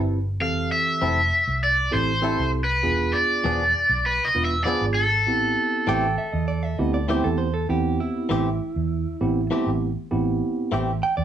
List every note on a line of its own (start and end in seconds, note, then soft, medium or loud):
0.00 0.41 G1 medium
0.00 0.18 C4 medium
0.00 0.18 E4 medium
0.00 0.18 G4 medium
0.00 0.18 B4 medium
0.40 0.69 F1 medium
0.40 1.16 E3 medium
0.40 1.16 C4 medium
0.40 1.17 G4 medium
0.40 1.17 A4 medium
0.40 0.72 F5 medium
0.72 1.63 E5 medium
1.02 1.30 F1 medium
1.02 1.20 C4 medium
1.02 1.20 E4 medium
1.02 1.21 A4 medium
1.48 1.90 C2 medium
1.64 1.94 D5 medium
1.91 2.36 A1 medium
1.91 2.11 C4 medium
1.91 2.11 E4 medium
1.91 2.11 G4 medium
1.91 2.11 A4 medium
1.91 2.50 C5 medium
2.22 2.60 C4 medium
2.22 2.41 C4 medium
2.22 2.60 E4 medium
2.22 2.42 E4 medium
2.22 2.60 G4 medium
2.22 2.60 A4 medium
2.22 2.42 A4 medium
2.39 2.82 C2 medium
2.64 3.16 B4 medium
2.83 3.12 E1 medium
2.83 3.59 B3 medium
2.83 3.59 D4 medium
2.83 3.59 F4 medium
2.83 3.59 G#4 medium
3.13 4.07 D5 medium
3.44 3.73 E1 medium
3.44 3.63 F3 medium
3.44 3.63 B3 medium
3.44 3.63 D4 medium
3.44 3.63 G#4 medium
3.89 4.18 B1 medium
4.06 4.26 B4 medium
4.25 4.45 D#5 medium
4.35 4.64 E1 medium
4.35 4.54 B3 medium
4.35 4.54 D4 medium
4.35 4.54 F4 medium
4.35 4.54 B4 medium
4.45 4.64 E5 medium
4.64 4.84 F3 medium
4.64 5.04 B3 medium
4.64 4.84 B3 medium
4.64 5.03 D4 medium
4.64 4.85 D4 medium
4.64 5.04 F4 medium
4.64 5.04 G#4 medium
4.64 4.85 G#4 medium
4.64 4.84 D5 medium
4.81 5.27 G#1 medium
4.94 9.46 A4 medium
5.27 5.55 A1 medium
5.27 6.02 B3 medium
5.27 6.03 C4 medium
5.27 6.02 E4 medium
5.27 6.03 G4 medium
5.87 6.16 A1 medium
5.87 6.05 E3 medium
5.87 6.06 A3 medium
5.87 6.06 C4 medium
5.87 6.06 G4 loud
5.87 6.17 G5 medium
6.18 6.32 E5 medium
6.32 6.76 E2 medium
6.32 6.47 D#5 medium
6.48 6.63 D5 medium
6.63 6.78 E5 medium
6.78 7.22 D2 medium
6.78 6.97 B3 medium
6.78 6.97 C4 medium
6.78 6.97 E4 medium
6.78 6.97 G4 medium
6.78 6.93 D#5 medium
6.94 7.08 D5 medium
7.08 7.27 E3 medium
7.08 7.27 A3 medium
7.08 7.46 B3 medium
7.08 7.47 C4 medium
7.08 7.27 C4 medium
7.08 7.47 E4 medium
7.08 7.47 G4 medium
7.08 7.28 G4 medium
7.08 7.23 C5 medium
7.24 7.68 E2 medium
7.24 7.38 A4 medium
7.38 7.53 C5 medium
7.54 7.68 A4 medium
7.69 7.98 E2 medium
7.69 8.45 B3 medium
7.69 8.45 C4 medium
7.69 8.45 E4 medium
7.69 8.45 G4 medium
7.69 7.99 G4 medium
8.00 9.78 E4 medium
8.29 8.59 A1 medium
8.29 8.48 E3 medium
8.29 8.48 A3 medium
8.29 8.49 C4 medium
8.29 8.49 G4 medium
8.76 9.04 E2 medium
9.21 9.50 A1 medium
9.21 9.40 B3 medium
9.21 9.40 C4 medium
9.21 9.40 E4 medium
9.21 9.40 G4 medium
9.50 9.69 E3 medium
9.50 9.69 A3 medium
9.50 9.89 B3 medium
9.50 9.89 C4 medium
9.50 9.70 C4 medium
9.50 9.88 E4 medium
9.50 9.89 G4 medium
9.50 9.70 G4 medium
9.67 9.95 A1 medium
10.11 10.40 A1 medium
10.11 10.87 B3 medium
10.11 10.87 C4 medium
10.11 10.87 E4 medium
10.11 10.87 G4 medium
10.72 11.01 A1 loud
10.72 10.90 E3 medium
10.72 10.90 A3 medium
10.72 10.91 C4 medium
10.72 10.91 G4 medium
11.03 11.17 G5 medium
11.17 11.24 E2 medium
11.17 11.24 D5 medium